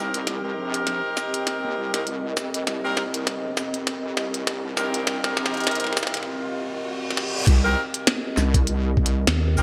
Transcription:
0.00 0.55 C2 medium
0.00 0.40 C4 medium
0.00 6.27 C4 medium
0.00 7.43 C4 medium
0.00 0.40 D#4 medium
0.00 0.40 G4 medium
0.00 6.27 G4 medium
0.00 7.43 G4 medium
0.00 0.40 A#4 medium
0.00 7.43 A#4 medium
0.00 4.07 D#5 medium
0.00 7.43 D#5 medium
0.00 riser medium
0.14 closed hi-hat medium
0.27 snare medium
0.27 closed hi-hat medium
0.44 1.90 C4 medium
0.44 1.90 D#4 medium
0.44 1.90 G4 medium
0.44 1.90 A#4 medium
0.57 0.85 A#1 loud
0.74 closed hi-hat medium
0.87 1.02 A#1 loud
0.87 snare medium
0.87 closed hi-hat medium
1.17 snare medium
1.17 shaker medium
1.34 closed hi-hat medium
1.47 snare medium
1.47 closed hi-hat medium
1.64 1.75 D#2 medium
1.77 2.35 C2 loud
1.94 2.04 C4 medium
1.94 2.04 D#4 medium
1.94 2.04 G4 medium
1.94 2.04 A#4 medium
1.94 snare medium
1.94 closed hi-hat medium
2.07 closed hi-hat medium
2.37 2.65 F2 loud
2.37 snare medium
2.37 shaker medium
2.54 closed hi-hat medium
2.67 2.95 C2 loud
2.67 snare medium
2.67 closed hi-hat medium
2.84 3.01 C4 medium
2.84 3.01 D#4 medium
2.84 3.01 G4 medium
2.84 3.01 A#4 loud
2.97 3.38 C2 loud
2.97 snare medium
3.14 closed hi-hat medium
3.27 snare medium
3.27 closed hi-hat medium
3.38 3.55 B1 loud
3.57 3.85 F2 loud
3.57 snare medium
3.57 shaker medium
3.74 closed hi-hat medium
3.87 4.15 F2 medium
3.87 6.27 F5 medium
3.87 snare medium
3.87 closed hi-hat medium
4.17 4.75 C2 loud
4.17 snare medium
4.34 closed hi-hat medium
4.47 snare medium
4.47 closed hi-hat medium
4.77 5.35 C2 loud
4.77 5.20 C4 medium
4.77 5.20 D#4 medium
4.77 5.20 G4 medium
4.77 5.20 A#4 medium
4.77 snare medium
4.77 shaker medium
4.94 closed hi-hat medium
5.07 snare medium
5.07 closed hi-hat medium
5.24 6.27 C4 medium
5.24 6.27 D#4 medium
5.24 6.27 G4 medium
5.24 6.27 A#4 medium
5.24 snare medium
5.37 5.65 A#1 loud
5.37 snare medium
5.46 snare medium
5.54 closed hi-hat soft
5.57 closed hi-hat soft
5.60 closed hi-hat soft
5.64 snare loud
5.64 closed hi-hat soft
5.67 5.82 A#1 loud
5.67 closed hi-hat medium
5.71 closed hi-hat medium
5.75 closed hi-hat medium
5.80 closed hi-hat medium
5.84 5.95 C2 medium
5.84 snare soft
5.87 snare soft
5.93 snare medium
5.97 snare medium
5.97 shaker medium
6.03 snare medium
6.07 snare medium
6.14 snare medium
6.14 closed hi-hat medium
6.17 snare soft
6.23 snare soft
6.27 reverse cymbal medium
7.11 snare medium
7.17 snare medium
7.47 7.75 C2 loud
7.47 9.63 C4 medium
7.47 9.63 G4 medium
7.47 9.63 A#4 medium
7.47 9.63 D#5 medium
7.47 kick loud
7.47 closed hi-hat medium
7.47 crash loud
7.65 7.81 C4 medium
7.65 7.81 D#4 medium
7.65 7.81 G4 medium
7.65 7.81 A#4 loud
7.94 closed hi-hat medium
8.07 snare loud
8.07 closed hi-hat medium
8.37 9.25 C2 medium
8.37 snare soft
8.37 shaker medium
8.54 kick loud
8.54 closed hi-hat medium
8.67 closed hi-hat medium
8.97 kick loud
9.06 closed hi-hat medium
9.27 9.55 D#2 medium
9.27 snare loud
9.27 closed hi-hat medium
9.57 9.63 C2 loud
9.57 9.63 C4 medium
9.57 9.63 D#4 medium
9.57 9.63 G4 medium
9.57 9.63 A#4 medium
9.57 shaker medium

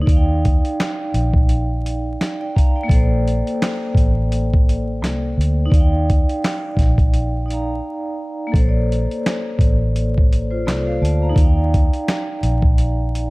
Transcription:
0.01 2.83 D#4 medium
0.06 0.59 D#2 medium
0.06 1.79 D5 medium
0.06 kick loud
0.06 closed hi-hat medium
0.12 1.82 F5 medium
0.16 1.85 G5 medium
0.45 kick medium
0.45 closed hi-hat medium
0.65 closed hi-hat soft
0.80 snare loud
0.80 clap medium
0.80 closed hi-hat medium
1.14 2.15 A#1 medium
1.14 closed hi-hat medium
1.34 kick medium
1.49 closed hi-hat medium
1.86 closed hi-hat medium
2.21 snare medium
2.21 clap medium
2.21 closed hi-hat medium
2.41 2.54 D5 medium
2.41 2.54 G5 medium
2.56 2.74 F5 medium
2.56 2.74 A#5 medium
2.56 kick medium
2.56 closed hi-hat medium
2.76 2.97 D5 medium
2.76 3.08 G5 medium
2.83 5.65 A#3 medium
2.88 3.41 A#1 medium
2.88 5.67 A4 medium
2.88 kick loud
2.88 closed hi-hat medium
2.94 5.70 C5 medium
2.99 5.69 D5 medium
3.28 closed hi-hat medium
3.47 closed hi-hat soft
3.62 snare loud
3.62 clap medium
3.62 closed hi-hat medium
3.95 5.02 A1 medium
3.95 kick medium
3.95 closed hi-hat medium
4.32 closed hi-hat medium
4.54 kick loud
4.69 closed hi-hat medium
5.02 5.34 C2 medium
5.02 snare medium
5.02 clap medium
5.02 closed hi-hat medium
5.37 5.69 D2 medium
5.37 closed hi-hat medium
5.65 7.41 D#4 medium
5.70 6.23 D#2 medium
5.70 7.44 D5 medium
5.70 kick loud
5.70 closed hi-hat medium
5.75 7.46 F5 medium
5.80 7.49 G5 medium
6.10 kick medium
6.10 closed hi-hat medium
6.29 closed hi-hat soft
6.44 snare loud
6.44 clap medium
6.44 closed hi-hat medium
6.77 7.79 A#1 medium
6.77 kick medium
6.77 closed hi-hat medium
6.81 snare soft
6.98 kick medium
6.98 closed hi-hat soft
7.14 closed hi-hat medium
7.46 8.53 D#4 medium
7.46 8.54 D5 medium
7.50 8.55 F5 soft
7.50 8.56 A#5 medium
7.50 closed hi-hat medium
8.47 10.94 A#3 medium
8.52 9.06 A#1 medium
8.52 10.26 A4 medium
8.52 kick loud
8.52 closed hi-hat medium
8.57 10.29 C5 medium
8.62 8.66 C#5 medium
8.69 10.35 D5 medium
8.92 closed hi-hat medium
9.11 closed hi-hat soft
9.26 snare loud
9.26 clap medium
9.26 closed hi-hat medium
9.59 10.67 A1 medium
9.59 kick medium
9.59 closed hi-hat medium
9.96 closed hi-hat medium
10.18 kick loud
10.33 closed hi-hat medium
10.51 10.65 F4 soft
10.51 10.65 C5 medium
10.66 10.99 C2 medium
10.66 10.85 A4 medium
10.66 10.85 D5 medium
10.66 snare medium
10.66 clap medium
10.66 closed hi-hat medium
10.87 11.01 C5 medium
10.87 11.01 F5 medium
11.02 11.34 D2 medium
11.02 11.21 D5 medium
11.02 11.21 A5 medium
11.02 closed hi-hat medium
11.22 11.39 F5 soft
11.22 11.55 A#5 medium
11.29 13.30 D#4 medium
11.35 11.88 D#2 loud
11.35 13.30 D5 medium
11.35 kick loud
11.35 closed hi-hat medium
11.40 13.30 F5 medium
11.45 13.30 G5 medium
11.74 kick medium
11.74 closed hi-hat medium
11.93 closed hi-hat soft
12.08 snare loud
12.08 clap medium
12.08 closed hi-hat medium
12.43 13.30 A#1 medium
12.43 closed hi-hat medium
12.62 kick medium
12.78 closed hi-hat medium
13.15 closed hi-hat medium

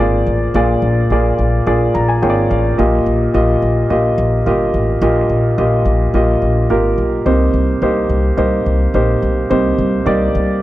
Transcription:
0.00 0.21 G#1 medium
0.00 0.55 A#2 medium
0.00 0.55 A#3 medium
0.00 0.55 F4 medium
0.00 0.55 G#4 medium
0.00 2.80 C5 medium
0.00 0.56 D5 medium
0.27 0.49 A1 medium
0.54 0.77 A#1 medium
0.54 1.34 A#2 medium
0.54 1.05 A#3 medium
0.54 1.05 F4 medium
0.54 1.06 G#4 medium
0.54 1.06 D5 medium
0.82 1.05 A#1 medium
1.10 1.33 A#1 medium
1.10 1.61 A#3 medium
1.10 1.62 F4 medium
1.10 1.62 G#4 medium
1.10 1.62 D5 medium
1.39 1.61 A#1 medium
1.67 1.89 A#1 medium
1.67 2.17 A#3 medium
1.67 2.17 F4 medium
1.67 2.17 G#4 medium
1.67 2.17 D5 medium
1.94 2.17 A#1 medium
1.94 2.07 A#5 medium
2.08 2.21 G#5 medium
2.22 2.45 G#1 medium
2.22 2.73 A#3 medium
2.22 2.73 F4 medium
2.22 2.73 G#4 medium
2.22 2.29 C#5 medium
2.22 2.48 G5 medium
2.30 2.77 D5 medium
2.50 2.73 A1 medium
2.50 2.76 F5 medium
2.78 3.01 A#1 medium
2.78 3.58 A#2 medium
2.78 3.29 A#3 medium
2.78 3.29 F4 medium
2.78 3.29 G4 medium
2.78 3.29 D#5 medium
3.06 3.29 A#1 medium
3.34 3.57 A#1 medium
3.34 3.85 A#3 medium
3.34 3.85 F4 medium
3.34 3.85 G4 medium
3.34 3.85 D#5 medium
3.62 3.85 A#1 medium
3.90 4.13 A#1 medium
3.90 4.41 A#3 medium
3.90 4.41 F4 medium
3.90 4.41 G4 medium
3.90 4.41 D#5 medium
4.18 4.41 A#1 medium
4.46 4.69 G1 medium
4.46 4.97 A#3 medium
4.46 4.97 F4 medium
4.46 4.97 G4 medium
4.46 4.98 D#5 medium
4.74 4.97 A1 medium
5.02 5.25 A#1 medium
5.02 5.82 A#2 medium
5.02 5.53 A#3 medium
5.02 5.53 F4 medium
5.02 5.53 G4 medium
5.02 5.53 D#5 medium
5.30 5.53 A#1 medium
5.58 5.81 A#1 medium
5.58 6.09 A#3 medium
5.58 6.09 F4 medium
5.58 6.09 G4 medium
5.58 6.09 D#5 medium
5.85 6.09 A#1 medium
6.14 6.37 A#1 medium
6.14 6.65 A#3 medium
6.14 6.65 F4 medium
6.14 6.65 G4 medium
6.14 6.65 D#5 medium
6.42 6.65 A#1 medium
6.70 6.93 G#1 medium
6.70 7.21 A#3 medium
6.70 7.21 F4 medium
6.70 7.21 G4 medium
6.70 7.21 A#4 medium
6.98 7.21 B1 medium
7.26 7.49 C2 medium
7.26 8.06 C3 medium
7.26 7.77 A#3 medium
7.26 7.77 D#4 medium
7.26 7.77 G4 medium
7.26 7.77 C5 medium
7.54 7.77 C2 medium
7.82 8.05 C2 medium
7.82 8.33 A#3 medium
7.82 8.33 D#4 medium
7.82 8.33 G4 medium
7.82 8.33 C5 medium
8.10 8.33 C2 medium
8.37 8.61 C2 medium
8.37 8.88 A#3 medium
8.37 8.89 D#4 medium
8.37 8.89 G4 medium
8.37 8.89 C5 medium
8.66 8.89 C2 medium
8.94 9.17 A#1 medium
8.94 9.45 A#3 medium
8.94 9.45 D#4 medium
8.94 9.45 G4 medium
8.94 9.45 C5 medium
9.22 9.45 B1 medium
9.50 9.73 C2 medium
9.50 10.30 C3 medium
9.50 10.01 A#3 medium
9.50 10.01 D#4 medium
9.50 10.01 G4 medium
9.50 10.01 C5 medium
9.78 10.01 C2 medium
10.05 10.29 C2 medium
10.05 10.57 A#3 medium
10.05 10.57 D#4 medium
10.05 10.57 G4 medium
10.05 10.57 D5 medium
10.35 10.57 C2 medium

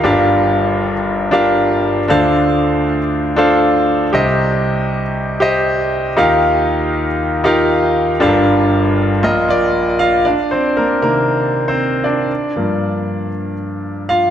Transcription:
0.04 2.05 G1 medium
0.04 2.05 G2 medium
0.04 0.93 D4 medium
0.04 0.93 F4 medium
0.04 0.93 G4 medium
0.04 0.94 A#4 medium
0.04 0.94 F5 medium
1.31 1.99 D4 medium
1.31 1.99 F4 medium
1.31 1.99 G4 medium
1.31 1.99 A#4 medium
1.31 2.00 F5 medium
2.08 4.09 D2 medium
2.08 4.09 D3 medium
2.08 2.97 D4 medium
2.08 2.98 F4 medium
2.08 2.98 A4 medium
2.08 2.98 C5 medium
2.08 2.98 F5 loud
3.36 4.03 D4 medium
3.36 4.04 F4 medium
3.36 4.04 A4 medium
3.36 4.04 C5 medium
3.36 4.04 F5 medium
4.13 6.13 C2 medium
4.13 6.13 C3 medium
4.13 5.02 G4 medium
4.13 5.02 C5 medium
4.13 5.03 D#5 loud
5.40 6.07 G4 medium
5.40 6.08 C5 medium
5.40 6.08 D#5 loud
6.17 8.17 D#2 medium
6.17 8.17 D#3 medium
6.17 7.06 D#4 medium
6.17 7.06 F4 medium
6.17 7.06 G4 medium
6.17 7.06 A#4 medium
6.17 7.07 F5 loud
7.44 8.11 D#4 medium
7.44 8.12 F4 medium
7.44 8.12 G4 medium
7.44 8.12 A#4 medium
7.44 8.12 F5 medium
8.20 9.19 G1 medium
8.20 9.19 G2 medium
8.20 9.10 D4 medium
8.20 9.10 F4 medium
8.20 9.10 G4 medium
8.20 8.28 A4 medium
8.20 9.11 F5 loud
8.28 9.13 A#4 medium
9.23 10.22 A#1 medium
9.23 10.22 A#2 medium
9.23 9.45 F4 medium
9.23 9.46 A#4 medium
9.23 9.46 D#5 loud
9.49 10.00 F4 medium
9.49 10.16 A#4 medium
9.49 10.17 D5 loud
9.99 10.24 F4 medium
9.99 10.26 F5 loud
10.25 10.50 D4 medium
10.25 10.49 D5 medium
10.51 10.76 C4 medium
10.51 10.77 C5 medium
10.77 10.84 A#3 medium
10.77 10.82 A#4 medium
11.02 12.26 C3 soft
11.02 12.26 D#3 soft
11.02 11.64 A#3 medium
11.02 11.70 A#4 medium
11.68 12.03 C4 medium
11.68 12.06 C5 medium
12.04 13.54 D4 medium
12.04 13.54 D5 medium
12.56 13.29 G2 medium
12.56 13.29 F3 soft
12.56 13.29 A#3 medium
14.09 14.30 F4 medium
14.09 14.30 F5 medium

